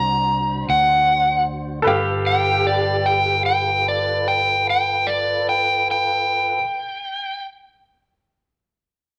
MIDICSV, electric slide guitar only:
0, 0, Header, 1, 2, 480
1, 0, Start_track
1, 0, Tempo, 743494
1, 676, Tempo, 787402
1, 1156, Time_signature, 12, 3, 24, 8
1, 1156, Tempo, 808625
1, 5519, End_track
2, 0, Start_track
2, 0, Title_t, "Electric slide guitar"
2, 0, Program_c, 0, 29
2, 0, Note_on_c, 0, 82, 73
2, 430, Note_off_c, 0, 82, 0
2, 450, Note_on_c, 0, 78, 77
2, 908, Note_off_c, 0, 78, 0
2, 1413, Note_on_c, 0, 79, 95
2, 1637, Note_off_c, 0, 79, 0
2, 1651, Note_on_c, 0, 74, 70
2, 1876, Note_off_c, 0, 74, 0
2, 1883, Note_on_c, 0, 79, 72
2, 2111, Note_off_c, 0, 79, 0
2, 2120, Note_on_c, 0, 79, 76
2, 2350, Note_off_c, 0, 79, 0
2, 2373, Note_on_c, 0, 74, 73
2, 2597, Note_off_c, 0, 74, 0
2, 2607, Note_on_c, 0, 79, 73
2, 2833, Note_off_c, 0, 79, 0
2, 2858, Note_on_c, 0, 79, 85
2, 3076, Note_on_c, 0, 74, 75
2, 3079, Note_off_c, 0, 79, 0
2, 3308, Note_off_c, 0, 74, 0
2, 3326, Note_on_c, 0, 79, 66
2, 3553, Note_off_c, 0, 79, 0
2, 3576, Note_on_c, 0, 79, 92
2, 4496, Note_off_c, 0, 79, 0
2, 5519, End_track
0, 0, End_of_file